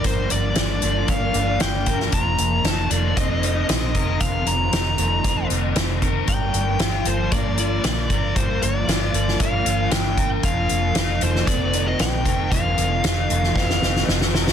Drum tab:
HH |x-x-x-x-x-x-x-x-|x-x-x-x-x-x-x-x-|x-x-x-x-x-x-x-x-|x-x-x-x-x-x-x-x-|
SD |----o-------o--o|----o-------o---|----o-------o---|----o-------o---|
BD |o-------o-----o-|o-------o-----o-|o-------o-----o-|o-------o-----o-|

HH |x-x-x-x-x-x-x-x-|x-x-x-x-x-x-x-x-|x-x-x-x---------|
SD |----o--o----o---|----o--o----o---|----o--ooooooooo|
BD |o-------o-----o-|o-------o-----o-|o-------o-------|